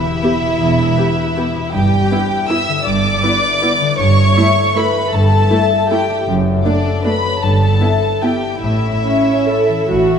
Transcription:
Already playing: E2 B3 E4 B4 E5
0.03 G4
0.23 B3 G4
0.41 B2
0.59 E1 E2
0.78 B3
0.97 B3 G4 B4
1.16 G4
1.36 B3 G4
1.55 B2
1.72 G1 G2 G4 G5
1.92 B3
2.11 B3 E4 B4
2.31 E4
2.49 B3 E4 E5 E6
2.68 D3
2.85 G1 G2 D5 D6
3.04 B3
3.23 B3 E4 B4
3.43 E4
3.62 B3 E4
3.81 D3
3.98 G1 G2 C#5 C#6
4.17 A3
4.36 A3 E4 E5
4.56 A4
4.75 A3 E4 B4 B5
4.94 G3
5.12 G1 G2 A4 A5
5.31 A3
5.50 A3 E4 E5
5.70 A4
5.90 A3 E4 G4 G5
6.09 G3
6.27 F#1 F#2
6.46 A3
6.64 A3 D4 D5
6.86 A4
7.05 A3 D4 F#4 B4 B5
7.24 F#3
7.42 G1 G2 A4 A5
7.61 B3
7.81 B3 E4 E5
8.02 B4
8.22 B3 E4 G4 G5
8.42 G3
8.61 A1 A2 E4 E5
8.83 C#4
9.04 C#4 E5
9.26 C#5
9.47 E4 A4
9.69 E3
9.88 A1 A2 F#4
10.08 C#4

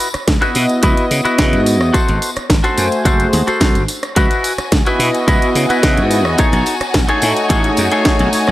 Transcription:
0.00 open hi-hat, tambourine
0.14 muted slap bass stroke, cross-stick, closed hi-hat, tambourine
0.28 C#2, kick, snare, closed hi-hat, tambourine
0.41 B3 E4 F#4 B4 D#5, closed hi-hat, tambourine
0.55 B2, open hi-hat, tambourine
0.69 closed hi-hat, tambourine
0.83 C#2 B3 E4 F#4 B4 D#5, kick, closed hi-hat, tambourine
0.97 B3 E4 F#4 D#5, closed hi-hat, tambourine
1.11 C#3, open hi-hat, tambourine
1.24 B3 E4 F#4 B4 D#5, muted slap bass stroke, closed hi-hat, tambourine
1.38 C#3, kick, snare, closed hi-hat, tambourine
1.53 G#2, closed hi-hat, tambourine
1.66 open hi-hat, tambourine
1.80 E2, cross-stick, tambourine
1.93 F#4 A4 C5, muted slap bass stroke, kick, closed hi-hat, tambourine
2.08 G#1, closed hi-hat, tambourine
2.22 open hi-hat, tambourine
2.36 muted slap bass stroke, cross-stick, closed hi-hat, tambourine
2.50 G#1, kick, snare, closed hi-hat, tambourine
2.63 A3 F#4 A4 C5 G#5, closed hi-hat, tambourine
2.78 F#2, open hi-hat, tambourine
2.91 closed hi-hat, tambourine
3.05 F#1 A3 F#4 G#4 A4 C5, kick, closed hi-hat, tambourine
3.19 A3 F#4 G#4 C5, closed hi-hat, tambourine
3.33 D#2, open hi-hat, tambourine
3.47 F#4 A4 C5, muted slap bass stroke, closed hi-hat, tambourine
3.60 C2, kick, snare, closed hi-hat, tambourine
3.75 G#1, closed hi-hat, tambourine
3.88 open hi-hat, tambourine
4.03 cross-stick, closed hi-hat, tambourine
4.16 C#2 E4 F#4 B4 D#5 G#5, kick, closed hi-hat, tambourine
4.31 closed hi-hat, tambourine
4.44 open hi-hat, tambourine
4.58 muted slap bass stroke, cross-stick, closed hi-hat, tambourine
4.72 C#2, kick, snare, closed hi-hat, tambourine
4.86 B3 E4 F#4 B4 D#5, closed hi-hat, tambourine
4.99 B2, open hi-hat, tambourine
5.14 closed hi-hat, tambourine
5.27 C#2 B3 E4 F#4 B4 D#5, kick, closed hi-hat, tambourine
5.41 B3 E4 F#4 D#5, closed hi-hat, tambourine
5.55 C#3, open hi-hat, tambourine
5.68 B3 E4 F#4 B4 D#5, muted slap bass stroke, closed hi-hat, tambourine
5.83 C#3, kick, snare, closed hi-hat, tambourine
5.97 G#2, closed hi-hat, tambourine
6.11 open hi-hat, tambourine
6.25 E2, cross-stick, tambourine
6.38 D#4 G#4 A4 C#5, muted slap bass stroke, kick, closed hi-hat, tambourine
6.52 B1, closed hi-hat, tambourine
6.66 open hi-hat, tambourine
6.80 muted slap bass stroke, cross-stick, closed hi-hat, tambourine
6.94 B1, kick, snare, closed hi-hat, tambourine
7.08 A3 D#4 G#4 A4 C#5 G#5, closed hi-hat, tambourine
7.22 A2, open hi-hat, tambourine
7.36 closed hi-hat, tambourine
7.49 A1 A3 D#4 G#4 A4 C#5, kick, closed hi-hat, tambourine
7.64 A3 D#4 G#4 C#5, closed hi-hat, tambourine
7.77 F#2, open hi-hat, tambourine
7.91 A3 D#4 G#4 A4 C#5 G#5, closed hi-hat, tambourine
8.05 kick, snare, closed hi-hat, tambourine
8.19 B1, closed hi-hat, tambourine
8.33 muted slap bass stroke, open hi-hat, tambourine
8.47 B1, cross-stick, tambourine

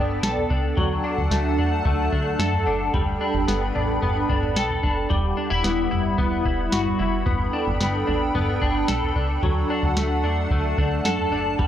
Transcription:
Already playing: G1 B3 D4 A4 D5 G5
0.23 B1 A4, snare
0.37 floor tom
0.50 C#2 D4, kick
0.77 D2 F#3 D4 F#5 A5, kick, floor tom
1.04 D4
1.18 D2, floor tom
1.31 D2 A3, snare
1.58 E2 D4, floor tom
1.85 D2 A3, kick, floor tom
2.12 D2 D4, kick
2.39 F#2 A4, snare
2.53 floor tom
2.66 F#1 D4
2.94 G1 G3 D4 G5 B5, kick, floor tom
3.21 D4
3.34 G1, floor tom
3.48 G1 B3, snare
3.75 A1 D4, floor tom
4.02 G1 B3, floor tom
4.29 G1 D4, kick
4.43 floor tom
4.56 B1 A4, snare
4.70 floor tom
4.83 F#1 D4, kick
5.10 E1 G3 E4 F#5 B5, kick, floor tom
5.37 D4
5.50 E1 E4, floor tom
5.64 E1 B3, snare
5.91 F#1 E4, floor tom
6.18 E1 B3, kick, floor tom
6.45 E1 E4, kick
6.72 G1 F#4, snare
6.86 floor tom
6.99 F#1 E4
7.26 G1 B3 D4 A4 G5, kick, floor tom
7.53 D4
7.67 G1, floor tom
7.80 G1 B3, snare
8.07 A1 D4, floor tom
8.35 G1 B3, floor tom
8.62 G1 D4, kick
8.88 B1 A4, snare
9.02 floor tom
9.16 C#2 D4, kick
9.43 D2 F#3 F#5 A5, kick, floor tom
9.70 D4
9.83 D2, floor tom
9.97 D2 A3, snare
10.24 E2 D4, floor tom
10.51 D2 A3, kick, floor tom
10.78 D2 D4, kick
11.05 F#2 A4, snare
11.19 floor tom
11.32 F#1 D4
11.59 G1 G3 B4 G5, kick, floor tom

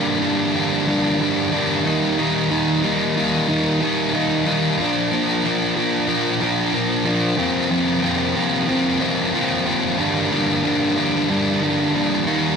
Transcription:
Already playing: G2 D3 G3 A#3 D4
0.20 G2 D3 G3 A#3 D4
0.55 G2 D3 G3 A#3 D4
0.87 G2 D3 G3 A#3 D4
1.20 G2 D3 G3 A#3 D4
1.52 G2 D3 G3 A#3 D4
1.85 D#3 G3 A#3 D#4
2.18 D#3 G3 A#3 D#4
2.50 D#3 G3 A#3 D#4
2.84 D#3 G3 A#3 D#4
3.17 D#3 G3 A#3 D#4
3.48 D#3 G3 A#3 D#4
3.81 D#3 G3 A#3 D#4
4.13 D#3 G3 A#3 D#4
4.46 D#3 G3 A#3 D#4
4.79 A#2 F3 A#3 D4
5.12 A#2 F3 A#3 D4
5.44 A#2 F3 A#3 D4
5.76 A#2 F3 A#3 D4
6.08 A#2 F3 A#3 D4
6.41 A#2 F3 A#3 D4
6.73 A#2 F3 A#3 D4
7.05 A#2 F3 A#3 D4
7.37 F2 C3 F3 A#3 C4
7.70 F2 C3 F3 A#3 C4
8.02 F2 C3 F3 A#3 C4
8.35 F2 C3 F3 A#3 C4
8.68 F2 C3 F3 A#3 C4
9.00 F2 C3 F3 A#3 C4
9.33 F2 C3 F3 A#3 C4
9.66 F2 C3 F3 A#3 C4
9.98 G2 D3 G3 A#3 D4
10.31 G2 D3 G3 A#3 D4
10.63 G2 D3 G3 A#3 D4
10.96 G2 D3 G3 A#3 D4
11.29 G2 D3 G3 A#3 D4
11.62 G2 D3 G3 A#3 D4
11.94 G2 D3 G3 A#3 D4
12.27 D#3 G3 A#3 D#4

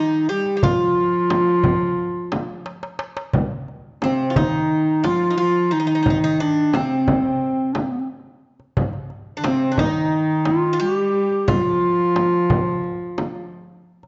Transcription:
Already playing: D#3 D#4
0.29 G3 G4, darbuka ka
0.46 darbuka ka
0.57 G4
0.63 F3 F4, darbuka dum, frame drum
0.96 darbuka ka
1.30 darbuka tek, frame drum
1.48 darbuka ka
1.64 darbuka dum, frame drum
1.81 darbuka ka
2.32 darbuka tek, frame drum
2.66 darbuka tek
2.83 darbuka ka
2.99 darbuka tek
3.17 darbuka ka
3.33 darbuka dum, frame drum
3.51 darbuka ka
3.68 darbuka ka
4.02 C3 C4, darbuka tek, frame drum
4.30 F4
4.36 D#3 D#4, darbuka dum, frame drum
5.03 F3 F4, darbuka tek, frame drum
5.30 D#4
5.37 F3 F4
5.71 D#3 D#4, darbuka ka
5.80 D#4
5.87 D#4, darbuka ka
5.95 D#4
6.03 D#4, frame drum, darbuka dum
6.10 D#4
6.23 D#4, darbuka ka
6.40 D4, darbuka ka
6.73 C3 C4, darbuka tek, frame drum
7.08 darbuka dum, frame drum
7.74 D4, darbuka tek, frame drum
7.82 C4
7.91 B3
7.99 C4
8.60 darbuka ka
8.77 darbuka dum, frame drum
8.93 darbuka ka
9.10 darbuka ka
9.37 D3 D4
9.44 C3 C4, darbuka tek, frame drum
9.72 D4
9.78 D#3 D#4, darbuka dum, frame drum
10.45 F4, darbuka tek, frame drum
10.73 F4
10.80 G3 G4
11.14 darbuka ka
11.31 darbuka ka
11.47 F3 F4, frame drum, darbuka dum
11.65 darbuka ka
12.00 darbuka ka
12.16 darbuka tek, frame drum
12.33 darbuka ka
12.50 frame drum, darbuka dum
12.67 darbuka ka
12.84 darbuka ka
13.18 darbuka tek, frame drum
13.35 darbuka ka
14.03 darbuka ka

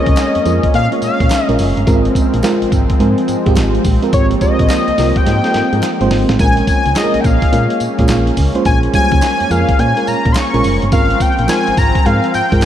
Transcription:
Already playing: G#3 A#3 C4 C#4 F4 A4 A#4 C5 D#5
0.06 C#2, kick, closed hi-hat
0.17 snare, clap, closed hi-hat, tambourine
0.35 F2, closed hi-hat
0.45 F2 G#3 C#4 F4 A#4, closed hi-hat, tambourine
0.63 kick, closed hi-hat
0.74 A#2 F5, closed hi-hat
0.91 G#3 C#4 F4 C#5, closed hi-hat
1.02 A#2 F5, closed hi-hat, tambourine
1.20 A#2, kick, closed hi-hat
1.30 snare, clap, closed hi-hat, tambourine
1.32 clap
1.44 G#3 D#5
1.48 A#1 C#4 F4 A#4, closed hi-hat
1.59 F#1, open hi-hat, tambourine
1.77 G1, closed hi-hat
1.86 G#1 F3 G#3 C4 F4 A#4, kick, closed hi-hat, tambourine
2.05 closed hi-hat
2.15 kick, closed hi-hat, tambourine
2.34 A#1, closed hi-hat
2.43 G#3 C4 F4 A#4, snare, clap, closed hi-hat, tambourine
2.45 clap
2.62 G#1, closed hi-hat
2.72 G#1, kick, closed hi-hat, tambourine
2.90 kick, closed hi-hat
2.99 G#2 G#3 C4 F4 A#4, closed hi-hat
3.18 closed hi-hat
3.28 G#2, closed hi-hat, tambourine
3.46 G#2 G#3 C4 F4 G4, kick, closed hi-hat
3.56 G#1, snare, clap, closed hi-hat, tambourine
3.75 closed hi-hat
3.84 A#1, kick, open hi-hat, tambourine
4.02 G#3 C4 F4 A#4, closed hi-hat
4.13 G#1 A#3 C#5, kick, closed hi-hat, tambourine
4.31 closed hi-hat
4.41 G#3 C4 F4 C5 D#5, kick, closed hi-hat, tambourine
4.59 A#1, kick, closed hi-hat
4.70 snare, clap, closed hi-hat, tambourine
4.71 clap
4.88 C2, closed hi-hat
4.98 C2 G#3 C4 F4 A#4, snare, open hi-hat, tambourine
5.16 G5, kick, closed hi-hat
5.26 G#2, snare, closed hi-hat
5.44 G#3 C4 F4 A4, snare, closed hi-hat
5.51 G#2 A#4, snare, closed hi-hat
5.73 G#2, closed hi-hat
5.83 snare, clap, closed hi-hat
6.00 G#1 G#3 C4 F4 C5, closed hi-hat
6.11 G#1, snare, open hi-hat
6.29 A1, snare, closed hi-hat
6.38 A#1 G#3 A#3 C#4 F4 A#4 G#5, kick, closed hi-hat, tambourine
6.57 closed hi-hat
6.67 G#5, kick, closed hi-hat, tambourine
6.86 C#2, closed hi-hat
6.96 G#3 C#4 F4 G#4 D#5, snare, clap, closed hi-hat, tambourine
7.04 A#4
7.14 A#1, closed hi-hat
7.20 G5, kick, closed hi-hat, tambourine
7.25 A#1 F5
7.42 kick, closed hi-hat
7.52 A#2 G#3 C#4 F4 A#4, closed hi-hat
7.70 closed hi-hat
7.80 A#2, closed hi-hat, tambourine
7.98 A#2 G#3 C#4 F4 G#4, kick, closed hi-hat
8.09 A#1, snare, clap, closed hi-hat, tambourine
8.27 closed hi-hat
8.37 C#2, kick, open hi-hat, tambourine
8.55 G#3 C#4 F4 C5, closed hi-hat
8.65 A#1 G#5, kick, closed hi-hat, tambourine
8.83 closed hi-hat
8.93 G3 G#3 C#4 F4 G#5, kick, closed hi-hat, tambourine
9.12 C#2, kick, closed hi-hat
9.22 snare, clap, closed hi-hat, tambourine
9.40 F2, closed hi-hat
9.50 F2 G#3 C#4 F4 A#4 F5, closed hi-hat, tambourine
9.69 kick, closed hi-hat
9.79 A#2 G#5, closed hi-hat
9.96 G#3 C#4 F4 A#4, closed hi-hat
10.07 A#2 A#5, closed hi-hat, tambourine
10.26 A#2, kick, closed hi-hat
10.32 C6, snare, clap, closed hi-hat, tambourine
10.37 C#6, clap
10.53 A#1 G#3 C#4 F4 A#4, closed hi-hat
10.64 F#1, open hi-hat, tambourine
10.82 G1, closed hi-hat
10.91 G#1 F3 G#3 C4 F4 A#4 F5, kick, closed hi-hat, tambourine
11.10 closed hi-hat
11.20 G5, kick, closed hi-hat, tambourine
11.39 A#1, closed hi-hat
11.48 G#3 C4 F4 A#4 G#5, snare, clap, closed hi-hat, tambourine
11.67 G#1, closed hi-hat
11.77 G#1 A#5, kick, closed hi-hat, tambourine
11.95 kick, closed hi-hat
12.05 G#2 G#3 C4 F4 A#4 F5, closed hi-hat
12.24 closed hi-hat
12.34 G#2 G5, closed hi-hat, tambourine
12.51 G#2 G#3 C4 F4 A#4, kick, closed hi-hat
12.62 clap, tambourine

